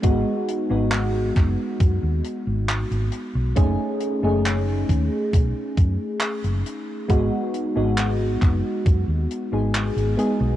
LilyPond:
<<
  \new Staff \with { instrumentName = "FM electric piano" } { \time 4/4 \key gis \phrygian \tempo 4 = 68 <gis b dis' fis'>8. <gis b dis' fis'>16 r2. | <a cis' dis' gis'>8. <a cis' dis' gis'>16 r2. | <gis b dis' fis'>8. <gis b dis' fis'>16 r4. r16 <gis b dis' gis'>8. <gis b dis' gis'>8 | }
  \new Staff \with { instrumentName = "Fingered electric bass" } { \clef bass \time 4/4 \key gis \phrygian gis,,16 r8 gis,,8. fis,,16 r16 fis,16 dis,16 r16 gis,,8 gis,,16 r16 b,,16 | fis,,16 r8 fis,,8. dis,16 r16 b,,16 r16 fis,16 r8 fis,,16 r8 | gis,,16 r8 gis,,8. fis,,16 r16 fis,16 dis,16 r16 gis,,8 gis,,16 r16 b,,16 | }
  \new DrumStaff \with { instrumentName = "Drums" } \drummode { \time 4/4 <hh bd>8 hh8 <hc hh>8 <hc hh bd>8 <hh bd>8 hh8 <hc hh>16 hh16 hh8 | <hh bd>8 hh8 <hc hh>8 <hh bd>8 <hh bd>8 <hh bd>8 <hc hh>16 hh16 hh8 | <hh bd>8 hh8 <hc hh>8 <hc hh bd>8 <hh bd>8 hh8 <hc hh>16 hh16 hh8 | }
>>